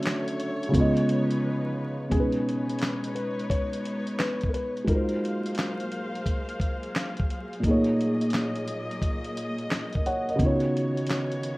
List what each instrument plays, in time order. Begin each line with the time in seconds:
Already playing: felt piano D3 A3 C#4 F#4 E5, string section D3 F#3 C#5
0.03 snare, clap, closed hi-hat
0.28 closed hi-hat
0.40 closed hi-hat
0.63 closed hi-hat
0.69 felt piano C#3 G#3
0.74 string section F3 D#4 B4, felt piano B3 F4, kick, closed hi-hat
0.79 felt piano D#5
0.97 closed hi-hat
1.09 closed hi-hat
1.31 closed hi-hat
2.09 felt piano B2 G#3 G#4, string section G#3 D#4 B4 C#5, kick, closed hi-hat
2.15 felt piano C#4 D#4
2.20 felt piano B4
2.32 closed hi-hat
2.49 closed hi-hat
2.69 closed hi-hat
2.79 snare, clap, closed hi-hat
3.04 closed hi-hat
3.15 felt piano B4, closed hi-hat
3.39 closed hi-hat
3.50 felt piano C#5, kick, closed hi-hat
3.73 closed hi-hat
3.85 closed hi-hat
4.07 closed hi-hat
4.19 felt piano B4, snare, clap, closed hi-hat
4.41 kick, closed hi-hat
4.49 felt piano A#4
4.54 felt piano B4, closed hi-hat
4.77 closed hi-hat
4.84 string section F#3 A#3 G#4 C5 F5, felt piano G#3 D#4, kick, closed hi-hat
4.88 felt piano F4 F#4 A#4
4.93 felt piano A#4 C5
5.09 closed hi-hat
5.25 closed hi-hat
5.46 closed hi-hat
5.55 snare, clap, closed hi-hat
5.80 closed hi-hat
5.92 closed hi-hat
6.15 closed hi-hat
6.26 kick, closed hi-hat
6.49 closed hi-hat
6.60 kick, closed hi-hat
6.83 closed hi-hat
6.96 snare, clap, closed hi-hat
7.17 kick, closed hi-hat
7.30 closed hi-hat
7.53 closed hi-hat
7.60 felt piano A#2 A3, kick
7.64 string section A#2 A#3 D#5, felt piano D#4, closed hi-hat
7.68 felt piano A#3 G#4 C#5
7.84 closed hi-hat
8.01 closed hi-hat
8.21 closed hi-hat
8.30 snare, clap, closed hi-hat
8.56 closed hi-hat
8.68 closed hi-hat
8.91 closed hi-hat
9.02 kick, closed hi-hat
9.24 closed hi-hat
9.37 closed hi-hat
9.58 closed hi-hat
9.71 snare, clap, closed hi-hat
9.93 felt piano A#4 D#5, kick, closed hi-hat
10.06 felt piano C#5 F#5, closed hi-hat
10.29 felt piano A#4 D#5, closed hi-hat
10.36 felt piano C#3 B3, string section D#3 B3 F#4 C#5, kick
10.40 felt piano D#4 F4, closed hi-hat
10.46 felt piano F#4 C#5
10.60 closed hi-hat
10.77 closed hi-hat
10.97 closed hi-hat
11.07 snare, clap, closed hi-hat
11.32 closed hi-hat
11.43 closed hi-hat